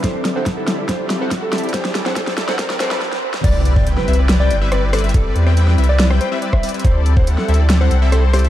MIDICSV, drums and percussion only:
0, 0, Header, 1, 2, 480
1, 0, Start_track
1, 0, Tempo, 425532
1, 42, Time_signature, 4, 2, 24, 8
1, 9577, End_track
2, 0, Start_track
2, 0, Title_t, "Drums"
2, 41, Note_on_c, 9, 36, 98
2, 42, Note_on_c, 9, 38, 68
2, 42, Note_on_c, 9, 42, 78
2, 154, Note_off_c, 9, 36, 0
2, 155, Note_off_c, 9, 38, 0
2, 155, Note_off_c, 9, 42, 0
2, 281, Note_on_c, 9, 38, 78
2, 281, Note_on_c, 9, 42, 65
2, 394, Note_off_c, 9, 38, 0
2, 394, Note_off_c, 9, 42, 0
2, 521, Note_on_c, 9, 36, 98
2, 521, Note_on_c, 9, 38, 74
2, 521, Note_on_c, 9, 42, 79
2, 634, Note_off_c, 9, 36, 0
2, 634, Note_off_c, 9, 38, 0
2, 634, Note_off_c, 9, 42, 0
2, 762, Note_on_c, 9, 38, 80
2, 762, Note_on_c, 9, 42, 64
2, 875, Note_off_c, 9, 38, 0
2, 875, Note_off_c, 9, 42, 0
2, 1001, Note_on_c, 9, 36, 98
2, 1002, Note_on_c, 9, 38, 85
2, 1002, Note_on_c, 9, 42, 81
2, 1114, Note_off_c, 9, 36, 0
2, 1115, Note_off_c, 9, 38, 0
2, 1115, Note_off_c, 9, 42, 0
2, 1241, Note_on_c, 9, 38, 85
2, 1241, Note_on_c, 9, 42, 66
2, 1354, Note_off_c, 9, 38, 0
2, 1354, Note_off_c, 9, 42, 0
2, 1481, Note_on_c, 9, 36, 92
2, 1482, Note_on_c, 9, 38, 83
2, 1482, Note_on_c, 9, 42, 82
2, 1594, Note_off_c, 9, 36, 0
2, 1594, Note_off_c, 9, 38, 0
2, 1594, Note_off_c, 9, 42, 0
2, 1722, Note_on_c, 9, 38, 95
2, 1722, Note_on_c, 9, 42, 51
2, 1783, Note_off_c, 9, 42, 0
2, 1783, Note_on_c, 9, 42, 70
2, 1835, Note_off_c, 9, 38, 0
2, 1845, Note_off_c, 9, 42, 0
2, 1845, Note_on_c, 9, 42, 49
2, 1903, Note_off_c, 9, 42, 0
2, 1903, Note_on_c, 9, 42, 66
2, 1961, Note_off_c, 9, 42, 0
2, 1961, Note_on_c, 9, 36, 103
2, 1961, Note_on_c, 9, 38, 90
2, 1961, Note_on_c, 9, 42, 72
2, 2074, Note_off_c, 9, 36, 0
2, 2074, Note_off_c, 9, 38, 0
2, 2074, Note_off_c, 9, 42, 0
2, 2084, Note_on_c, 9, 38, 84
2, 2197, Note_off_c, 9, 38, 0
2, 2201, Note_on_c, 9, 38, 91
2, 2201, Note_on_c, 9, 42, 69
2, 2313, Note_off_c, 9, 38, 0
2, 2313, Note_off_c, 9, 42, 0
2, 2324, Note_on_c, 9, 38, 84
2, 2437, Note_off_c, 9, 38, 0
2, 2440, Note_on_c, 9, 38, 88
2, 2440, Note_on_c, 9, 42, 79
2, 2441, Note_on_c, 9, 36, 93
2, 2553, Note_off_c, 9, 38, 0
2, 2553, Note_off_c, 9, 42, 0
2, 2554, Note_off_c, 9, 36, 0
2, 2565, Note_on_c, 9, 38, 83
2, 2677, Note_off_c, 9, 38, 0
2, 2680, Note_on_c, 9, 38, 103
2, 2680, Note_on_c, 9, 42, 62
2, 2793, Note_off_c, 9, 38, 0
2, 2793, Note_off_c, 9, 42, 0
2, 2804, Note_on_c, 9, 38, 94
2, 2917, Note_off_c, 9, 38, 0
2, 2921, Note_on_c, 9, 36, 98
2, 2921, Note_on_c, 9, 38, 103
2, 2921, Note_on_c, 9, 42, 79
2, 3033, Note_off_c, 9, 38, 0
2, 3033, Note_off_c, 9, 42, 0
2, 3034, Note_off_c, 9, 36, 0
2, 3044, Note_on_c, 9, 38, 92
2, 3157, Note_off_c, 9, 38, 0
2, 3161, Note_on_c, 9, 38, 104
2, 3161, Note_on_c, 9, 42, 67
2, 3274, Note_off_c, 9, 38, 0
2, 3274, Note_off_c, 9, 42, 0
2, 3285, Note_on_c, 9, 38, 94
2, 3397, Note_off_c, 9, 38, 0
2, 3401, Note_on_c, 9, 38, 56
2, 3514, Note_off_c, 9, 38, 0
2, 3525, Note_on_c, 9, 38, 64
2, 3638, Note_off_c, 9, 38, 0
2, 3765, Note_on_c, 9, 38, 85
2, 3878, Note_off_c, 9, 38, 0
2, 3882, Note_on_c, 9, 36, 127
2, 3882, Note_on_c, 9, 42, 82
2, 3882, Note_on_c, 9, 49, 99
2, 3994, Note_off_c, 9, 36, 0
2, 3995, Note_off_c, 9, 42, 0
2, 3995, Note_off_c, 9, 49, 0
2, 4121, Note_on_c, 9, 42, 70
2, 4234, Note_off_c, 9, 42, 0
2, 4245, Note_on_c, 9, 36, 107
2, 4358, Note_off_c, 9, 36, 0
2, 4361, Note_on_c, 9, 42, 81
2, 4474, Note_off_c, 9, 42, 0
2, 4485, Note_on_c, 9, 38, 37
2, 4598, Note_off_c, 9, 38, 0
2, 4601, Note_on_c, 9, 42, 52
2, 4663, Note_off_c, 9, 42, 0
2, 4663, Note_on_c, 9, 42, 68
2, 4776, Note_off_c, 9, 42, 0
2, 4842, Note_on_c, 9, 38, 116
2, 4842, Note_on_c, 9, 42, 84
2, 4955, Note_off_c, 9, 38, 0
2, 4955, Note_off_c, 9, 42, 0
2, 5082, Note_on_c, 9, 42, 70
2, 5194, Note_off_c, 9, 42, 0
2, 5322, Note_on_c, 9, 37, 80
2, 5322, Note_on_c, 9, 42, 75
2, 5434, Note_off_c, 9, 37, 0
2, 5434, Note_off_c, 9, 42, 0
2, 5562, Note_on_c, 9, 37, 83
2, 5562, Note_on_c, 9, 46, 97
2, 5624, Note_on_c, 9, 42, 71
2, 5675, Note_off_c, 9, 37, 0
2, 5675, Note_off_c, 9, 46, 0
2, 5685, Note_off_c, 9, 42, 0
2, 5685, Note_on_c, 9, 42, 54
2, 5743, Note_off_c, 9, 42, 0
2, 5743, Note_on_c, 9, 42, 68
2, 5801, Note_off_c, 9, 42, 0
2, 5801, Note_on_c, 9, 42, 83
2, 5802, Note_on_c, 9, 36, 123
2, 5914, Note_off_c, 9, 36, 0
2, 5914, Note_off_c, 9, 42, 0
2, 6042, Note_on_c, 9, 42, 68
2, 6154, Note_off_c, 9, 42, 0
2, 6165, Note_on_c, 9, 37, 58
2, 6278, Note_off_c, 9, 37, 0
2, 6282, Note_on_c, 9, 42, 79
2, 6395, Note_off_c, 9, 42, 0
2, 6406, Note_on_c, 9, 38, 40
2, 6518, Note_off_c, 9, 38, 0
2, 6522, Note_on_c, 9, 42, 51
2, 6584, Note_off_c, 9, 42, 0
2, 6584, Note_on_c, 9, 42, 69
2, 6697, Note_off_c, 9, 42, 0
2, 6762, Note_on_c, 9, 38, 127
2, 6762, Note_on_c, 9, 42, 82
2, 6875, Note_off_c, 9, 38, 0
2, 6875, Note_off_c, 9, 42, 0
2, 6886, Note_on_c, 9, 37, 72
2, 6999, Note_off_c, 9, 37, 0
2, 7002, Note_on_c, 9, 42, 65
2, 7115, Note_off_c, 9, 42, 0
2, 7242, Note_on_c, 9, 42, 80
2, 7354, Note_off_c, 9, 42, 0
2, 7365, Note_on_c, 9, 36, 62
2, 7365, Note_on_c, 9, 37, 78
2, 7478, Note_off_c, 9, 36, 0
2, 7478, Note_off_c, 9, 37, 0
2, 7482, Note_on_c, 9, 46, 101
2, 7544, Note_on_c, 9, 42, 74
2, 7595, Note_off_c, 9, 46, 0
2, 7606, Note_off_c, 9, 42, 0
2, 7606, Note_on_c, 9, 42, 52
2, 7664, Note_off_c, 9, 42, 0
2, 7664, Note_on_c, 9, 42, 72
2, 7722, Note_off_c, 9, 42, 0
2, 7722, Note_on_c, 9, 36, 127
2, 7722, Note_on_c, 9, 42, 79
2, 7835, Note_off_c, 9, 36, 0
2, 7835, Note_off_c, 9, 42, 0
2, 7962, Note_on_c, 9, 42, 66
2, 8075, Note_off_c, 9, 42, 0
2, 8085, Note_on_c, 9, 36, 108
2, 8198, Note_off_c, 9, 36, 0
2, 8203, Note_on_c, 9, 42, 79
2, 8315, Note_off_c, 9, 42, 0
2, 8326, Note_on_c, 9, 38, 40
2, 8439, Note_off_c, 9, 38, 0
2, 8442, Note_on_c, 9, 42, 52
2, 8504, Note_off_c, 9, 42, 0
2, 8504, Note_on_c, 9, 42, 67
2, 8617, Note_off_c, 9, 42, 0
2, 8682, Note_on_c, 9, 38, 125
2, 8682, Note_on_c, 9, 42, 88
2, 8795, Note_off_c, 9, 38, 0
2, 8795, Note_off_c, 9, 42, 0
2, 8922, Note_on_c, 9, 42, 68
2, 9035, Note_off_c, 9, 42, 0
2, 9162, Note_on_c, 9, 37, 75
2, 9162, Note_on_c, 9, 42, 78
2, 9275, Note_off_c, 9, 37, 0
2, 9275, Note_off_c, 9, 42, 0
2, 9402, Note_on_c, 9, 37, 84
2, 9402, Note_on_c, 9, 46, 96
2, 9464, Note_on_c, 9, 42, 69
2, 9515, Note_off_c, 9, 37, 0
2, 9515, Note_off_c, 9, 46, 0
2, 9526, Note_off_c, 9, 42, 0
2, 9526, Note_on_c, 9, 42, 51
2, 9577, Note_off_c, 9, 42, 0
2, 9577, End_track
0, 0, End_of_file